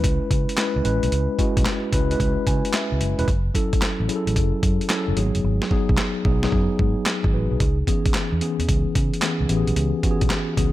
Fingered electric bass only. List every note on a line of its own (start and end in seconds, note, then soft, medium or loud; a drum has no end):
0.04 0.18 C#2 loud
0.31 0.45 C#3 medium
0.76 0.83 C#2 medium
0.85 0.99 A1 medium
1.03 1.10 B1 medium
1.12 1.26 C#2 loud
1.57 1.64 B1 medium
1.93 2.14 C#2 medium
2.20 2.34 C#2 loud
2.47 2.61 C#3 medium
2.92 2.99 C#2 medium
3.01 3.15 F#1 medium
3.19 3.26 E1 medium
3.28 3.49 F#1 loud
3.73 muted fingered electric bass stroke soft
4.00 4.07 A1 medium
4.27 4.34 A1 medium
4.36 4.50 F#1 loud
4.63 4.77 F#2 medium
5.08 5.15 F#1 medium
5.17 5.31 G#1 loud
5.35 5.42 F#1 medium
5.44 5.58 G#1 loud
5.89 5.96 B1 medium
6.25 6.46 B1 medium
6.53 6.67 F#2 medium
6.79 6.93 G#2 medium
7.24 7.31 G#1 medium
7.33 7.47 A1 medium
7.51 7.58 B1 medium
7.60 7.81 C#2 loud
8.06 muted fingered electric bass stroke soft
8.32 8.39 E2 medium
8.59 8.66 E2 medium
8.69 8.83 C#2 loud
8.95 9.10 C#3 medium
9.41 9.48 C#2 medium
9.49 9.64 A1 medium
9.67 9.75 B1 medium
9.76 9.91 C#2 loud
10.22 10.29 B1 medium
10.57 10.72 C#2 medium